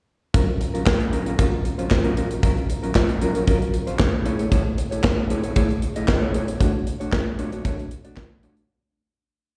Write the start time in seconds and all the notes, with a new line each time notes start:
0.34 F#3 C#4 F4 A#4, kick, closed hi-hat
0.48 muted clean electric guitar stroke
0.60 muted clean electric guitar stroke, closed hi-hat
0.74 F#3 C#4 F4 A#4, closed hi-hat
0.86 kick, snare, clap
1.00 muted clean electric guitar stroke, closed hi-hat
1.12 F#3 C#4 F4 A#4, closed hi-hat
1.26 F#3 C#4 F4 A#4, closed hi-hat
1.38 F#3 C#4 F4 A#4, kick, closed hi-hat
1.52 muted clean electric guitar stroke
1.64 muted clean electric guitar stroke, closed hi-hat
1.78 F#3 C#4 F4 C5, closed hi-hat
1.90 kick, snare, clap
2.04 F#3 C#4 F4 A#4, closed hi-hat
2.17 F#3 C#4 F4 A#4, closed hi-hat
2.30 muted clean electric guitar stroke, closed hi-hat
2.43 F#3 C#4 F4 A#4, kick, closed hi-hat
2.57 muted clean electric guitar stroke, closed hi-hat
2.69 muted clean electric guitar stroke, closed hi-hat
2.83 F#3 C#4 F4 A#4, closed hi-hat
2.95 kick, snare, clap
3.09 muted clean electric guitar stroke, closed hi-hat
3.21 F#3 C#4 F4 A#4, closed hi-hat
3.35 F#3 C#4 F4 A#4, closed hi-hat
3.47 F#3 C#4 F4 A#4, kick, closed hi-hat
3.61 muted clean electric guitar stroke, closed hi-hat
3.73 muted clean electric guitar stroke, closed hi-hat
3.87 F#3 C#4 F4 C5, closed hi-hat
3.99 muted clean electric guitar stroke, kick, snare, clap
4.13 muted clean electric guitar stroke
4.25 A3 E4 G#4 C#5, closed hi-hat
4.39 A3 E4 G#4 C#5, closed hi-hat
4.51 A3 E4 G#4 C#5, kick, closed hi-hat
4.65 muted clean electric guitar stroke
4.78 muted clean electric guitar stroke, closed hi-hat
4.91 A3 E4 G#4 C#5, closed hi-hat
5.04 kick, snare, clap
5.17 muted clean electric guitar stroke
5.30 A3 E4 G#4 C#5, closed hi-hat
5.44 A3 E4 G#4 C#5, closed hi-hat
5.56 A3 E4 G#4 C#5, kick, closed hi-hat
5.70 muted clean electric guitar stroke, closed hi-hat
5.82 muted clean electric guitar stroke, closed hi-hat
5.96 A3 E4 G#4 D#5, closed hi-hat
6.08 kick, snare, clap
6.22 A3 E4 G#4 C#5
6.34 A3 E4 G#4 C#5, closed hi-hat
6.48 muted clean electric guitar stroke, closed hi-hat
6.60 A3 D4 F#4 C#5, kick, closed hi-hat
6.74 muted clean electric guitar stroke
6.86 muted clean electric guitar stroke, closed hi-hat
7.00 A3 D4 F#4 C#5, closed hi-hat
7.12 kick, snare, clap
7.26 muted clean electric guitar stroke
7.38 A3 D4 F#4 C#5, closed hi-hat
7.52 A3 D4 F#4 C#5, closed hi-hat
7.64 A3 D4 F#4 C#5, kick, closed hi-hat
7.79 muted clean electric guitar stroke, closed hi-hat
7.91 muted clean electric guitar stroke, closed hi-hat
8.05 A3 D4 F#4 D5, closed hi-hat
8.16 kick, snare, clap
8.31 muted clean electric guitar stroke
8.43 A3 D4 F#4 C#5, closed hi-hat
8.57 muted clean electric guitar stroke, closed hi-hat